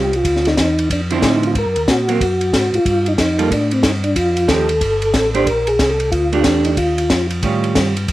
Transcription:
0.00 0.24 C2 medium
0.00 0.17 G4 medium
0.13 0.48 F4 loud
0.13 ride soft
0.25 0.56 D2 medium
0.25 kick soft
0.25 ride medium
0.36 snare soft
0.45 0.59 D#4 medium
0.45 snare soft
0.45 ride soft
0.57 0.89 E2 medium
0.57 0.89 D#4 medium
0.57 kick soft
0.57 snare medium
0.57 hi-hat pedal medium
0.57 ride medium
0.79 ride soft
0.90 1.21 F2 medium
0.90 1.01 D4 medium
0.90 kick soft
0.90 ride medium
1.10 1.53 D3 medium
1.10 1.53 F3 medium
1.10 1.53 C4 medium
1.10 1.23 C4 medium
1.10 1.53 E4 medium
1.10 ride soft
1.22 1.54 A2 medium
1.22 1.45 D#4 medium
1.22 kick soft
1.22 snare medium
1.22 hi-hat pedal medium
1.22 ride medium
1.43 1.52 F4 medium
1.43 ride soft
1.55 1.65 G#2 medium
1.55 1.90 A#4 medium
1.55 kick soft
1.55 ride medium
1.66 1.77 F#2 medium
1.76 1.87 D#2 medium
1.76 ride soft
1.87 2.19 A#2 medium
1.87 2.77 F#4 medium
1.87 kick soft
1.87 snare medium
1.87 hi-hat pedal medium
1.87 ride medium
2.08 2.19 F#3 medium
2.08 2.20 A#3 medium
2.08 2.20 C4 medium
2.08 ride soft
2.21 2.52 F#2 medium
2.21 kick soft
2.21 ride medium
2.41 ride soft
2.53 2.72 G#2 medium
2.53 kick soft
2.53 snare medium
2.53 hi-hat pedal medium
2.53 ride medium
2.73 2.79 G#2 soft
2.73 3.08 F4 loud
2.73 ride soft
2.85 3.17 G2 medium
2.85 kick soft
2.85 ride medium
3.06 3.13 D#4 medium
3.06 ride soft
3.18 3.50 F2 medium
3.18 3.50 D#4 loud
3.18 kick soft
3.18 snare medium
3.18 hi-hat pedal medium
3.18 ride medium
3.38 3.50 G3 medium
3.38 3.50 A#3 medium
3.38 3.50 F4 medium
3.38 3.50 A4 medium
3.38 ride soft
3.50 3.82 A2 medium
3.50 3.73 D4 medium
3.50 kick soft
3.50 ride medium
3.71 3.84 C4 medium
3.71 ride soft
3.82 4.15 G2 medium
3.82 3.92 D#4 medium
3.82 kick soft
3.82 snare medium
3.82 hi-hat pedal medium
3.82 ride medium
4.04 4.16 D4 medium
4.04 ride soft
4.16 4.48 F2 medium
4.16 4.50 F4 medium
4.16 kick soft
4.16 ride medium
4.37 ride medium
4.48 4.80 D#2 medium
4.48 4.67 F3 medium
4.48 4.67 A3 medium
4.48 4.67 D#4 medium
4.48 4.68 G4 medium
4.48 5.30 A4 loud
4.48 kick soft
4.48 snare medium
4.48 hi-hat pedal medium
4.48 ride medium
4.69 ride soft
4.81 5.13 G1 medium
4.81 kick soft
4.81 ride medium
5.02 ride soft
5.14 5.46 A1 medium
5.14 kick soft
5.14 snare medium
5.14 hi-hat pedal medium
5.14 ride medium
5.34 5.45 A3 medium
5.34 5.46 D4 medium
5.34 5.46 G4 medium
5.34 5.47 C5 medium
5.34 ride soft
5.46 5.78 A#1 medium
5.46 5.69 A#4 loud
5.46 kick soft
5.46 ride medium
5.67 5.91 G#4 loud
5.67 ride soft
5.79 6.11 C2 medium
5.79 kick soft
5.79 snare medium
5.79 hi-hat pedal soft
5.79 ride medium
5.90 6.10 A4 loud
6.00 ride soft
6.12 6.44 D2 medium
6.12 6.42 F4 medium
6.12 kick soft
6.12 ride medium
6.32 6.75 A3 medium
6.32 6.75 D4 medium
6.32 6.76 G4 medium
6.32 ride soft
6.44 6.76 E2 medium
6.44 6.65 D4 medium
6.44 kick soft
6.44 snare medium
6.44 hi-hat pedal medium
6.44 ride medium
6.65 6.71 D#4 medium
6.65 ride soft
6.77 7.09 D#2 medium
6.77 7.27 F4 medium
6.77 kick soft
6.77 ride medium
6.98 ride medium
7.10 7.42 F2 medium
7.10 kick soft
7.10 snare medium
7.10 hi-hat pedal soft
7.10 ride medium
7.30 ride soft
7.43 7.75 A2 medium
7.43 7.92 D#3 soft
7.43 7.92 G3 soft
7.43 7.93 C#4 soft
7.43 7.93 F4 soft
7.43 kick soft
7.43 ride medium
7.64 ride soft
7.75 8.07 G2 medium
7.75 kick soft
7.75 snare medium
7.75 hi-hat pedal medium
7.75 ride medium
7.97 ride soft
8.08 8.12 F2 medium
8.08 kick soft
8.08 ride medium

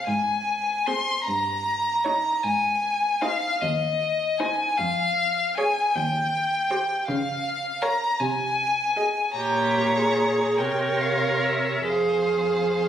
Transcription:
0.07 1.05 G#2 soft
0.07 0.88 G#5 soft
0.86 1.16 C4 soft
0.86 1.17 G#4 soft
0.86 1.25 C6 medium
1.25 2.23 G2 soft
1.25 2.44 A#5 medium
2.04 2.34 D#4 soft
2.04 2.34 C#5 soft
2.43 3.40 G#2 soft
2.43 3.23 G#5 medium
3.21 3.52 D#4 soft
3.21 3.51 C5 soft
3.21 3.63 F5 medium
3.61 4.57 D#2 soft
3.61 4.40 D#5 soft
4.38 4.69 D#4 soft
4.38 4.69 C5 soft
4.38 4.79 G#5 medium
4.77 5.74 F2 medium
4.77 5.56 F5 medium
5.57 5.86 G#4 soft
5.57 5.85 C#5 soft
5.57 5.96 G#5 medium
5.95 6.87 D#2 soft
5.95 7.07 G5 medium
6.70 6.98 G4 soft
6.70 6.98 C5 soft
7.08 7.99 C#3 medium
7.08 7.83 F5 medium
7.82 8.10 A#4 soft
7.82 8.10 C#5 soft
7.82 8.21 A#5 medium
8.20 9.13 C3 medium
8.20 9.35 G#5 medium
8.97 9.25 G#4 soft
8.97 9.26 D#5 soft
9.36 10.61 A#2 soft
9.36 9.93 G4 soft
9.36 10.55 C#5 soft
9.36 10.60 A#5 medium
9.97 10.60 G#4 soft
10.58 11.89 C3 soft
10.58 11.89 A#4 soft
10.58 11.87 C#5 soft
10.58 11.02 G5 soft
11.01 11.46 F5 soft
11.45 11.91 E5 soft
11.89 12.88 F2 soft
11.89 12.88 G#4 soft
11.89 12.88 C5 soft
11.89 12.88 F5 soft

